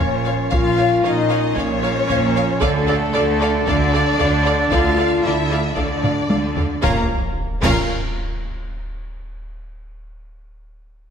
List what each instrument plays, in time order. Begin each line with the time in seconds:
Already playing: french horn section C#4, woodwind section C#4 F4 A#4 F5, violin section C#5
0.00 double bass section A#1, cello section A#2, taiko low
0.25 viola section C#5, violin section F5
0.50 double bass section A#1, cello section A#2, french horn section F4, viola section C#5, violin section F5, taiko
0.77 viola section C#5, violin section F5
1.03 double bass section A#1, cello section A#2, french horn section D#4, viola section C#5, violin section D#5 F5
1.29 viola section C#5, violin section F5
1.55 double bass section A#1, cello section A#2, french horn section C#4, viola section C#5, violin section C#5 F5, taiko
1.82 viola section C#5, violin section F5
2.07 double bass section A#1, cello section A#2, viola section C#5, violin section F5, taiko low
2.35 viola section C#5, violin section F5
2.61 double bass section D2, cello section D3, french horn section A3, woodwind section D4 A4 D5 A5, viola section A4 D5, violin section A4 D5 F5, taiko
2.87 viola section A4 D5, violin section D5 F5
3.14 double bass section D2, cello section D3, viola section A4 D5, violin section D5 F5
3.40 viola section A4 D5, violin section D5 F5
3.66 double bass section D2, cello section D3, french horn section D4, viola section A4 D5, violin section D5 F5, taiko
3.92 viola section A4 D5, violin section D5 F5, taiko rim
4.18 double bass section D2, cello section D3, viola section A4 D5, violin section D5 F5, taiko low
4.45 viola section A4 D5, violin section D5 F5
4.71 double bass section D2, cello section D3, french horn section F4, viola section A4 D5, violin section D5 F5, taiko
4.97 viola section A4 D5, violin section D5 F5
5.24 double bass section D2, cello section D3, french horn section E4, viola section A4 D5, violin section D5 E5 F5
5.51 viola section A4 D5, violin section D5 F5
5.75 double bass section D2, cello section D3, french horn section D4, viola section A4 D5, violin section D5 F5, taiko
6.03 viola section A4 D5, violin section D5 F5, taiko low-mid
6.29 double bass section D2, cello section D3, viola section A4 D5, violin section D5 F5, taiko high
6.56 viola section A4 D5, violin section D5 F5, taiko low
6.82 double bass section A#1, timpani A#2, cello section A#2, french horn section A#3, viola section C#4 F4, woodwind section F4 A#4 C#5 F5, violin section A#4 F5 A#5, concert bass drum, snare, taiko, sub drop
7.61 double bass section A#1, timpani A#2, cello section A#2, viola section C#4 F4, violin section A#4 F5 A#5, concert bass drum, taiko, crash